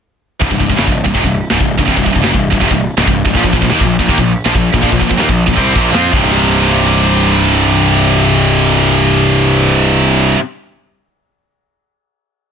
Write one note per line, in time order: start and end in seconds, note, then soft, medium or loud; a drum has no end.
0.40 0.50 C1 loud
0.40 0.48 C2 medium
0.40 0.48 G2 loud
0.40 kick loud
0.40 open hi-hat medium
0.49 0.59 C1 medium
0.49 0.57 C2 medium
0.49 0.57 G2 medium
0.49 kick medium
0.58 0.68 C1 medium
0.58 0.67 C2 medium
0.58 0.67 G2 medium
0.58 kick medium
0.58 open hi-hat medium
0.68 0.77 C1 medium
0.68 0.75 C2 medium
0.68 0.76 G2 medium
0.68 kick medium
0.76 0.86 F#1 medium
0.76 0.84 F#2 medium
0.76 0.84 C#3 loud
0.76 snare loud
0.76 open hi-hat medium
0.84 1.04 C1 medium
0.84 1.00 C2 medium
0.84 1.00 G2 medium
0.84 kick medium
0.97 open hi-hat medium
1.04 1.14 C1 medium
1.04 1.14 C2 medium
1.04 1.13 G2 medium
1.04 kick loud
1.04 snare soft
1.14 1.23 F1 loud
1.14 1.22 F2 medium
1.14 1.23 C3 medium
1.14 kick loud
1.14 open hi-hat medium
1.23 1.41 C1 medium
1.23 1.38 C2 medium
1.23 1.38 G2 medium
1.23 kick medium
1.23 snare soft
1.32 open hi-hat medium
1.50 1.60 C#1 loud
1.50 1.60 C#2 medium
1.50 1.60 G#2 loud
1.50 snare loud
1.50 open hi-hat medium
1.60 1.77 C1 medium
1.60 1.75 C2 medium
1.60 1.75 G2 medium
1.60 kick medium
1.69 open hi-hat medium
1.78 1.87 C1 medium
1.78 1.87 C2 medium
1.78 1.87 G2 medium
1.78 kick medium
1.87 1.96 C1 medium
1.87 1.96 C2 medium
1.87 1.96 G2 medium
1.87 kick loud
1.87 open hi-hat medium
1.97 2.05 C1 medium
1.97 2.04 C2 medium
1.97 2.05 G2 medium
1.97 kick medium
2.05 2.15 C1 medium
2.05 2.14 C2 medium
2.05 2.14 G2 medium
2.05 kick medium
2.05 open hi-hat medium
2.15 2.22 C1 medium
2.15 2.24 C2 medium
2.15 2.24 G2 medium
2.15 kick medium
2.23 2.32 F#1 loud
2.23 2.33 F#2 medium
2.23 2.33 C#3 loud
2.23 snare loud
2.23 open hi-hat medium
2.34 2.51 C1 medium
2.34 2.48 C2 medium
2.34 2.48 G2 medium
2.34 kick medium
2.44 open hi-hat medium
2.51 2.61 C1 medium
2.51 2.61 C2 medium
2.51 2.61 G2 medium
2.51 kick loud
2.61 2.70 F1 loud
2.61 2.70 F2 medium
2.61 2.70 C3 medium
2.61 kick loud
2.61 open hi-hat medium
2.71 2.87 C1 medium
2.71 2.85 C2 medium
2.71 2.85 G2 medium
2.71 kick medium
2.79 open hi-hat medium
2.98 3.06 C#1 loud
2.98 3.06 C#2 medium
2.98 3.07 G#2 loud
2.98 snare loud
3.07 3.24 C1 medium
3.07 3.22 C2 medium
3.07 3.22 G2 medium
3.07 kick medium
3.16 open hi-hat medium
3.25 3.34 C1 medium
3.25 3.35 C2 medium
3.25 3.35 G2 medium
3.25 kick loud
3.34 3.44 A#1 loud
3.34 3.44 A#2 medium
3.34 3.44 F3 loud
3.34 kick loud
3.34 open hi-hat medium
3.44 3.52 A#1 medium
3.44 3.53 A#2 medium
3.44 3.53 F3 medium
3.44 kick medium
3.52 3.62 A#1 medium
3.52 3.63 A#2 medium
3.52 3.63 F3 medium
3.52 kick medium
3.52 open hi-hat medium
3.62 3.71 A#1 medium
3.62 3.72 A#2 medium
3.62 3.72 F3 medium
3.62 kick medium
3.69 3.80 D#2 loud
3.69 3.81 D#3 medium
3.69 3.81 A#3 loud
3.69 snare loud
3.69 open hi-hat medium
3.81 3.98 A#1 medium
3.81 3.96 A#2 medium
3.81 3.96 F3 medium
3.81 kick medium
3.89 open hi-hat medium
3.99 4.08 A#1 medium
3.99 4.09 A#2 medium
3.99 4.09 F3 medium
3.99 kick loud
3.99 snare soft
4.07 4.17 D#2 loud
4.07 4.17 D#3 medium
4.07 4.17 A#3 loud
4.07 kick medium
4.07 open hi-hat medium
4.17 4.35 A#1 medium
4.17 4.32 A#2 medium
4.17 4.32 F3 medium
4.17 kick medium
4.27 open hi-hat medium
4.45 4.54 A#1 loud
4.45 4.52 A#2 medium
4.45 4.53 F3 medium
4.45 snare loud
4.45 open hi-hat medium
4.53 4.72 A#1 medium
4.53 4.68 A#2 medium
4.53 4.69 F3 medium
4.53 kick medium
4.65 open hi-hat medium
4.72 4.82 A#1 medium
4.72 4.79 A#2 medium
4.72 4.81 F3 medium
4.72 kick loud
4.81 4.91 A#1 loud
4.81 4.90 A#2 loud
4.81 4.90 F3 loud
4.81 kick loud
4.81 open hi-hat medium
4.91 5.00 A#1 medium
4.91 4.98 A#2 medium
4.91 4.99 F3 medium
4.91 kick medium
4.99 5.10 A#1 medium
4.99 5.07 A#2 medium
4.99 5.08 F3 medium
4.99 kick medium
4.99 open hi-hat medium
5.09 5.17 A#1 medium
5.09 5.18 A#2 medium
5.09 5.17 F3 medium
5.09 kick medium
5.17 5.27 D#2 loud
5.17 5.26 D#3 loud
5.17 5.27 A#3 loud
5.17 snare loud
5.17 open hi-hat medium
5.27 5.46 A#1 medium
5.27 5.42 A#2 medium
5.27 5.42 F3 medium
5.27 kick medium
5.39 open hi-hat medium
5.46 5.56 A#1 medium
5.46 5.56 A#2 medium
5.46 5.56 F3 medium
5.46 kick loud
5.46 snare soft
5.56 5.74 C2 loud
5.56 5.74 C3 loud
5.56 5.74 G3 medium
5.56 5.75 C4 loud
5.56 kick medium
5.56 open hi-hat medium
5.75 5.92 A#1 medium
5.75 5.93 A#2 medium
5.75 5.93 F3 medium
5.75 5.93 A#3 medium
5.75 kick loud
5.75 open hi-hat medium
5.93 6.10 F2 loud
5.93 6.12 F3 medium
5.93 6.12 C4 loud
5.93 6.12 F4 medium
5.93 snare loud
6.12 10.35 C1 medium
6.12 10.38 C2 loud
6.12 10.39 G2 medium
6.12 10.39 C3 loud
6.12 10.40 G3 medium
6.12 10.41 D#4 loud
6.12 kick loud
6.12 crash medium